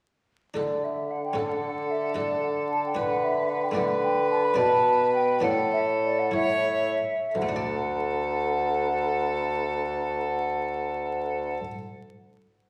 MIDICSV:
0, 0, Header, 1, 5, 480
1, 0, Start_track
1, 0, Key_signature, 2, "major"
1, 0, Tempo, 533333
1, 514, Time_signature, 6, 3, 24, 8
1, 3874, Tempo, 561798
1, 4834, Tempo, 603015
1, 5314, Tempo, 641711
1, 5794, Tempo, 687285
1, 10001, End_track
2, 0, Start_track
2, 0, Title_t, "Flute"
2, 0, Program_c, 0, 73
2, 504, Note_on_c, 0, 74, 59
2, 753, Note_on_c, 0, 76, 60
2, 767, Note_off_c, 0, 74, 0
2, 994, Note_on_c, 0, 78, 68
2, 1007, Note_off_c, 0, 76, 0
2, 1111, Note_off_c, 0, 78, 0
2, 1116, Note_on_c, 0, 79, 63
2, 1232, Note_on_c, 0, 78, 72
2, 1246, Note_off_c, 0, 79, 0
2, 1713, Note_on_c, 0, 76, 65
2, 1726, Note_off_c, 0, 78, 0
2, 1946, Note_on_c, 0, 74, 64
2, 1959, Note_off_c, 0, 76, 0
2, 2178, Note_off_c, 0, 74, 0
2, 2184, Note_on_c, 0, 78, 67
2, 2239, Note_off_c, 0, 78, 0
2, 2437, Note_on_c, 0, 81, 78
2, 2554, Note_off_c, 0, 81, 0
2, 2567, Note_on_c, 0, 79, 67
2, 2679, Note_on_c, 0, 78, 76
2, 2692, Note_off_c, 0, 79, 0
2, 2910, Note_on_c, 0, 76, 72
2, 2924, Note_off_c, 0, 78, 0
2, 3139, Note_on_c, 0, 78, 73
2, 3153, Note_off_c, 0, 76, 0
2, 3257, Note_off_c, 0, 78, 0
2, 3262, Note_on_c, 0, 79, 71
2, 3316, Note_off_c, 0, 79, 0
2, 3381, Note_on_c, 0, 78, 80
2, 3436, Note_off_c, 0, 78, 0
2, 3618, Note_on_c, 0, 79, 84
2, 3863, Note_off_c, 0, 79, 0
2, 3867, Note_on_c, 0, 81, 95
2, 3986, Note_on_c, 0, 83, 86
2, 3999, Note_off_c, 0, 81, 0
2, 4103, Note_off_c, 0, 83, 0
2, 4108, Note_on_c, 0, 81, 98
2, 4577, Note_off_c, 0, 81, 0
2, 4583, Note_on_c, 0, 79, 94
2, 4824, Note_off_c, 0, 79, 0
2, 4829, Note_on_c, 0, 78, 102
2, 4883, Note_off_c, 0, 78, 0
2, 5070, Note_on_c, 0, 76, 86
2, 5125, Note_off_c, 0, 76, 0
2, 5317, Note_on_c, 0, 74, 96
2, 5431, Note_on_c, 0, 78, 88
2, 5442, Note_off_c, 0, 74, 0
2, 5542, Note_off_c, 0, 78, 0
2, 5546, Note_on_c, 0, 76, 95
2, 6255, Note_off_c, 0, 76, 0
2, 6280, Note_on_c, 0, 78, 84
2, 9226, Note_off_c, 0, 78, 0
2, 10001, End_track
3, 0, Start_track
3, 0, Title_t, "Violin"
3, 0, Program_c, 1, 40
3, 1228, Note_on_c, 1, 69, 55
3, 2634, Note_off_c, 1, 69, 0
3, 2668, Note_on_c, 1, 71, 62
3, 3371, Note_off_c, 1, 71, 0
3, 3400, Note_on_c, 1, 71, 73
3, 4836, Note_on_c, 1, 69, 67
3, 4848, Note_off_c, 1, 71, 0
3, 5551, Note_off_c, 1, 69, 0
3, 5558, Note_on_c, 1, 73, 76
3, 5908, Note_off_c, 1, 73, 0
3, 6270, Note_on_c, 1, 69, 64
3, 9217, Note_off_c, 1, 69, 0
3, 10001, End_track
4, 0, Start_track
4, 0, Title_t, "Harpsichord"
4, 0, Program_c, 2, 6
4, 486, Note_on_c, 2, 62, 33
4, 498, Note_on_c, 2, 69, 34
4, 511, Note_on_c, 2, 50, 36
4, 1200, Note_on_c, 2, 61, 43
4, 1201, Note_off_c, 2, 62, 0
4, 1207, Note_off_c, 2, 69, 0
4, 1217, Note_on_c, 2, 69, 39
4, 1916, Note_off_c, 2, 61, 0
4, 1924, Note_off_c, 2, 69, 0
4, 1931, Note_on_c, 2, 62, 38
4, 1942, Note_on_c, 2, 69, 36
4, 2640, Note_off_c, 2, 62, 0
4, 2646, Note_off_c, 2, 69, 0
4, 2653, Note_on_c, 2, 62, 41
4, 2666, Note_on_c, 2, 71, 43
4, 3343, Note_on_c, 2, 57, 42
4, 3349, Note_off_c, 2, 62, 0
4, 3351, Note_off_c, 2, 50, 0
4, 3360, Note_on_c, 2, 62, 46
4, 3363, Note_off_c, 2, 71, 0
4, 3372, Note_on_c, 2, 74, 48
4, 3387, Note_on_c, 2, 50, 49
4, 4064, Note_off_c, 2, 57, 0
4, 4067, Note_off_c, 2, 62, 0
4, 4072, Note_off_c, 2, 50, 0
4, 4077, Note_on_c, 2, 62, 54
4, 4078, Note_off_c, 2, 74, 0
4, 4089, Note_on_c, 2, 74, 55
4, 4098, Note_on_c, 2, 47, 57
4, 4794, Note_off_c, 2, 47, 0
4, 4796, Note_off_c, 2, 62, 0
4, 4802, Note_off_c, 2, 74, 0
4, 4812, Note_on_c, 2, 62, 49
4, 4822, Note_on_c, 2, 74, 51
4, 4833, Note_on_c, 2, 45, 62
4, 5519, Note_off_c, 2, 62, 0
4, 5524, Note_off_c, 2, 74, 0
4, 5525, Note_on_c, 2, 64, 56
4, 5541, Note_on_c, 2, 73, 54
4, 6002, Note_off_c, 2, 45, 0
4, 6237, Note_off_c, 2, 64, 0
4, 6245, Note_off_c, 2, 73, 0
4, 6268, Note_on_c, 2, 50, 51
4, 6316, Note_on_c, 2, 57, 53
4, 6363, Note_on_c, 2, 62, 60
4, 6415, Note_on_c, 2, 74, 58
4, 9214, Note_off_c, 2, 50, 0
4, 9263, Note_off_c, 2, 57, 0
4, 9310, Note_off_c, 2, 62, 0
4, 9362, Note_off_c, 2, 74, 0
4, 10001, End_track
5, 0, Start_track
5, 0, Title_t, "Bassoon"
5, 0, Program_c, 3, 70
5, 517, Note_on_c, 3, 50, 54
5, 3354, Note_off_c, 3, 50, 0
5, 3386, Note_on_c, 3, 50, 62
5, 4103, Note_on_c, 3, 47, 67
5, 4116, Note_off_c, 3, 50, 0
5, 4819, Note_off_c, 3, 47, 0
5, 4824, Note_on_c, 3, 45, 72
5, 6004, Note_off_c, 3, 45, 0
5, 6270, Note_on_c, 3, 38, 75
5, 9217, Note_off_c, 3, 38, 0
5, 10001, End_track
0, 0, End_of_file